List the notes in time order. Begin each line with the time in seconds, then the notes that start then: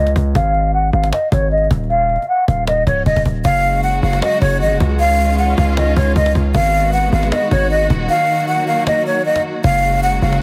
Already playing: C#2 D#5
0.07 cajon slap
0.16 C#2, cajon bass
0.35 G#1 F5, cajon bass
0.55 cajon slap
0.74 F#5
0.93 G#1 F5, cajon slap
1.04 cajon slap
1.13 D#5, cajon slap
1.32 G#1 C#5, cajon bass
1.51 D#5, cajon slap
1.58 cajon slap
1.64 cajon slap
1.71 D#1, cajon bass
1.77 cajon slap
1.84 cajon slap
1.90 F5, cajon slap
2.09 cajon slap
2.16 cajon slap
2.22 cajon slap
2.29 F#5
2.48 D#1 F5, cajon bass
2.67 D#5, cajon slap
2.87 C#1 C#5, cajon bass
3.06 D#1 D#5, cajon bass
3.16 D#1, cajon bass, cajon slap
3.26 D#1, cajon bass
3.45 F#1 C#3 F#3 G#3 F#4 F5, cajon bass
3.84 F#5
4.03 F#1 F5
4.13 cajon slap
4.22 D#5, cajon slap
4.41 F#1 C#5, cajon bass
4.61 G#1 D#5
4.71 F#1
4.80 C#2, cajon bass
5.00 D#3 C#4 F4 F5
5.39 F#5
5.58 C#2 F5, cajon bass
5.77 D#5, cajon slap
5.96 C#2 C#5, cajon bass
6.16 C#2 D#5, cajon bass
6.26 cajon slap
6.35 C#2, cajon bass
6.55 G#1 D#3 G#3 B3 F#4 F5, cajon bass
6.93 F#5
7.13 G#1 F5
7.23 cajon slap
7.32 D#5, cajon slap
7.51 G#1 C#5, cajon bass
7.71 D#5
7.90 D#1, cajon bass
8.09 F#3 A#3 F5
8.48 F#5
8.68 F5
8.87 D#5, cajon slap
9.06 C#5
9.26 D#5
9.36 cajon slap
9.64 F#1 C#3 F#3 G#3 F#4 F5, cajon bass
10.03 F#5
10.22 F#1 F5, cajon slap
10.33 cajon slap